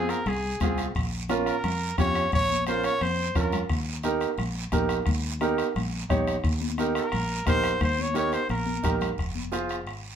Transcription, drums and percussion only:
0.09 bombo rim medium
0.09 short guiro medium
0.26 bombo rim medium
0.26 low conga medium
0.26 long guiro medium
0.60 bombo low medium
0.60 bombo rim medium
0.60 high conga medium
0.60 low conga medium
0.60 short guiro medium
0.78 bombo rim medium
0.78 short guiro medium
0.95 bombo low medium
0.95 bombo rim medium
0.95 long guiro medium
1.29 bombo rim medium
1.29 high conga medium
1.29 short guiro medium
1.46 bombo rim medium
1.46 short guiro medium
1.64 bombo rim medium
1.64 low conga medium
1.64 long guiro medium
1.98 bombo low medium
1.98 bombo rim medium
1.98 high conga medium
1.98 short guiro medium
2.15 bombo rim medium
2.15 short guiro medium
2.32 bombo low medium
2.32 bombo rim medium
2.32 low conga medium
2.32 long guiro medium
2.50 high conga medium
2.67 bombo rim medium
2.67 high conga medium
2.67 short guiro medium
2.83 bombo rim medium
2.83 short guiro medium
3.01 bombo rim medium
3.01 high conga medium
3.01 long guiro medium
3.35 bombo low medium
3.35 bombo rim medium
3.35 short guiro medium
3.53 bombo rim medium
3.53 low conga medium
3.53 short guiro medium
3.69 bombo low medium
3.69 bombo rim medium
3.69 long guiro medium
4.03 bombo rim medium
4.03 high conga medium
4.03 short guiro medium
4.21 bombo rim medium
4.21 short guiro medium
4.38 bombo rim medium
4.38 low conga medium
4.38 long guiro medium
4.72 bombo low medium
4.72 bombo rim medium
4.72 high conga medium
4.72 short guiro medium
4.89 bombo rim medium
4.89 short guiro medium
5.06 bombo low medium
5.06 bombo rim medium
5.06 low conga medium
5.06 long guiro medium
5.41 bombo rim medium
5.41 high conga medium
5.41 short guiro medium
5.58 bombo rim medium
5.58 short guiro medium
5.76 bombo rim medium
5.76 low conga medium
5.76 long guiro medium
6.10 bombo low medium
6.10 bombo rim medium
6.10 high conga medium
6.10 low conga medium
6.10 short guiro medium
6.27 bombo rim medium
6.27 short guiro medium
6.44 bombo low medium
6.44 bombo rim medium
6.44 long guiro medium
6.61 high conga medium
6.78 bombo rim medium
6.78 high conga medium
6.78 short guiro medium
6.95 bombo rim medium
6.95 short guiro medium
7.12 bombo rim medium
7.12 low conga medium
7.12 long guiro medium
7.47 bombo low medium
7.47 bombo rim medium
7.47 high conga medium
7.47 short guiro medium
7.64 bombo rim medium
7.64 short guiro medium
7.81 bombo low medium
7.81 bombo rim medium
7.81 low conga medium
7.81 long guiro medium
7.99 high conga medium
8.15 bombo rim medium
8.15 high conga medium
8.15 short guiro medium
8.32 bombo rim medium
8.32 short guiro medium
8.49 bombo rim medium
8.49 high conga medium
8.49 long guiro medium
8.66 high conga medium
8.84 bombo low medium
8.84 bombo rim medium
8.84 low conga medium
8.84 short guiro medium
9.01 bombo rim medium
9.01 low conga medium
9.01 short guiro medium
9.18 bombo low medium
9.18 bombo rim medium
9.18 long guiro medium
9.35 high conga medium
9.52 bombo rim medium
9.52 high conga medium
9.52 short guiro medium
9.69 bombo rim medium
9.69 short guiro medium
9.87 bombo rim medium
9.87 long guiro medium

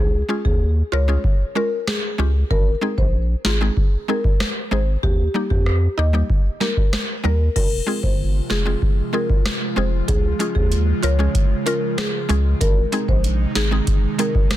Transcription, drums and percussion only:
0.45 kick medium
1.24 kick medium
1.87 cross-stick loud
1.87 snare loud
2.51 kick loud
2.98 kick medium
3.45 snare loud
3.77 kick loud
4.24 kick medium
4.40 cross-stick loud
4.40 snare loud
5.03 kick loud
5.51 kick medium
5.66 cross-stick medium
6.30 kick loud
6.61 snare medium
6.77 kick loud
6.93 cross-stick loud
6.93 snare loud
7.56 kick loud
7.56 crash medium
8.03 kick medium
8.50 snare loud
8.82 kick loud
9.30 kick medium
9.46 cross-stick loud
9.46 snare loud
10.08 kick loud
10.08 closed hi-hat medium
10.40 closed hi-hat medium
10.56 kick medium
10.72 closed hi-hat medium
11.03 closed hi-hat medium
11.35 kick loud
11.35 closed hi-hat medium
11.67 closed hi-hat medium
11.98 cross-stick loud
11.98 snare loud
11.98 closed hi-hat medium
12.29 closed hi-hat soft
12.61 kick loud
12.61 closed hi-hat medium
12.93 closed hi-hat medium
13.08 kick medium
13.24 closed hi-hat medium
13.55 snare loud
13.55 closed hi-hat medium
13.87 kick loud
13.87 closed hi-hat medium
14.19 closed hi-hat medium
14.35 kick loud
14.51 cross-stick loud
14.51 snare loud
14.51 closed hi-hat medium

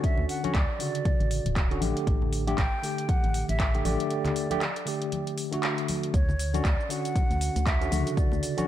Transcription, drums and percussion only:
0.04 kick loud
0.04 closed hi-hat medium
0.17 low conga medium
0.29 open hi-hat loud
0.44 closed hi-hat medium
0.44 high conga medium
0.55 kick loud
0.55 clap loud
0.55 closed hi-hat medium
0.80 open hi-hat loud
0.95 closed hi-hat medium
1.05 kick loud
1.05 closed hi-hat medium
1.05 high conga medium
1.20 closed hi-hat soft
1.31 open hi-hat loud
1.46 closed hi-hat medium
1.46 muted conga soft
1.56 kick loud
1.56 clap loud
1.56 closed hi-hat medium
1.71 closed hi-hat soft
1.82 open hi-hat loud
1.82 high conga medium
1.97 closed hi-hat soft
2.07 kick loud
2.07 closed hi-hat medium
2.22 low conga medium
2.33 open hi-hat loud
2.47 closed hi-hat medium
2.47 muted conga soft
2.47 high conga medium
2.58 kick loud
2.58 clap loud
2.58 closed hi-hat medium
2.83 open hi-hat loud
2.98 closed hi-hat medium
3.09 kick loud
3.09 closed hi-hat medium
3.09 high conga medium
3.24 closed hi-hat soft
3.34 open hi-hat loud
3.48 closed hi-hat medium
3.48 muted conga soft
3.60 kick loud
3.60 clap loud
3.60 closed hi-hat medium
3.74 closed hi-hat soft
3.74 muted conga medium
3.85 open hi-hat loud
3.85 high conga medium
4.00 closed hi-hat medium
4.11 closed hi-hat medium
4.25 clap soft
4.25 closed hi-hat soft
4.25 low conga medium
4.36 open hi-hat loud
4.51 closed hi-hat medium
4.51 muted conga soft
4.51 high conga medium
4.61 clap loud
4.61 closed hi-hat medium
4.76 closed hi-hat soft
4.87 open hi-hat loud
5.02 closed hi-hat medium
5.12 closed hi-hat medium
5.12 high conga medium
5.27 closed hi-hat soft
5.38 open hi-hat loud
5.53 closed hi-hat medium
5.53 muted conga soft
5.63 clap loud
5.63 closed hi-hat medium
5.78 closed hi-hat soft
5.88 open hi-hat loud
5.88 high conga medium
6.03 closed hi-hat medium
6.14 kick loud
6.14 closed hi-hat medium
6.14 cabasa soft
6.29 low conga medium
6.29 cabasa soft
6.39 open hi-hat loud
6.39 cabasa medium
6.54 closed hi-hat medium
6.54 muted conga soft
6.54 high conga medium
6.54 cabasa soft
6.65 kick loud
6.65 clap loud
6.65 closed hi-hat medium
6.65 cabasa soft
6.80 cabasa soft
6.90 open hi-hat loud
6.90 cabasa medium
7.05 closed hi-hat medium
7.05 cabasa soft
7.16 kick loud
7.16 closed hi-hat medium
7.16 high conga medium
7.16 cabasa soft
7.31 closed hi-hat soft
7.31 cabasa soft
7.41 open hi-hat loud
7.41 cabasa medium
7.56 closed hi-hat medium
7.56 muted conga soft
7.56 cabasa soft
7.66 kick loud
7.66 clap loud
7.66 closed hi-hat medium
7.66 cabasa soft
7.81 closed hi-hat soft
7.81 muted conga medium
7.81 cabasa soft
7.91 open hi-hat loud
7.91 high conga medium
7.91 cabasa medium
8.07 closed hi-hat medium
8.07 cabasa soft
8.17 kick loud
8.17 closed hi-hat medium
8.17 cabasa soft
8.32 low conga medium
8.32 cabasa soft
8.43 open hi-hat loud
8.43 cabasa medium
8.58 closed hi-hat medium
8.58 high conga loud
8.58 cabasa soft

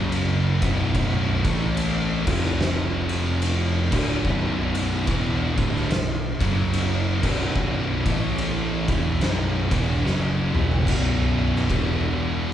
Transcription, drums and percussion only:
0.12 ride loud
0.62 kick loud
0.62 ride medium
0.95 kick loud
0.95 ride loud
1.45 kick loud
1.45 ride medium
1.77 ride loud
2.27 kick loud
2.27 crash loud
2.45 snare soft
2.61 snare loud
3.09 ride medium
3.42 ride loud
3.92 kick loud
3.92 crash loud
4.25 kick loud
4.75 ride medium
5.07 kick loud
5.07 ride loud
5.58 kick loud
5.58 ride medium
5.76 snare soft
5.91 snare loud
5.91 ride loud
6.41 kick loud
6.41 ride medium
6.74 ride loud
7.23 kick loud
7.23 crash loud
7.56 kick loud
8.06 kick loud
8.06 ride medium
8.38 ride loud
8.88 kick loud
8.88 ride medium
9.21 snare loud
9.21 ride medium
9.71 kick loud
9.71 ride medium
10.06 snare medium
10.55 mid tom medium
10.71 floor tom medium
10.87 kick loud
10.87 crash loud
10.87 crash medium
11.56 snare soft
11.70 kick medium
11.70 crash medium

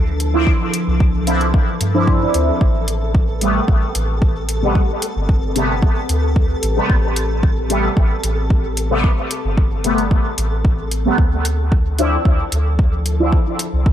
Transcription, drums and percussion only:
0.20 closed hi-hat medium
0.47 kick loud
0.74 closed hi-hat medium
1.00 kick loud
1.27 closed hi-hat medium
1.41 closed hi-hat soft
1.54 kick loud
1.81 closed hi-hat medium
2.07 kick loud
2.34 closed hi-hat medium
2.61 kick loud
2.88 closed hi-hat medium
3.15 kick loud
3.41 closed hi-hat medium
3.68 kick loud
3.95 closed hi-hat medium
4.22 kick loud
4.49 closed hi-hat medium
4.75 kick loud
5.02 closed hi-hat medium
5.29 kick loud
5.56 closed hi-hat medium
5.82 kick loud
6.09 closed hi-hat medium
6.36 kick loud
6.63 closed hi-hat medium
6.90 kick loud
7.16 closed hi-hat medium
7.43 kick loud
7.70 closed hi-hat medium
7.97 kick loud
8.23 closed hi-hat medium
8.50 kick loud
8.77 closed hi-hat medium
9.04 kick loud
9.31 closed hi-hat medium
9.57 kick loud
9.84 closed hi-hat medium
9.98 closed hi-hat soft
10.11 kick loud
10.38 closed hi-hat medium
10.65 kick loud
10.91 closed hi-hat medium
11.18 kick loud
11.45 closed hi-hat medium
11.72 kick loud
11.99 closed hi-hat medium
12.25 kick loud
12.52 closed hi-hat medium
12.79 kick loud
13.06 closed hi-hat medium
13.32 kick loud
13.59 closed hi-hat medium
13.86 kick loud

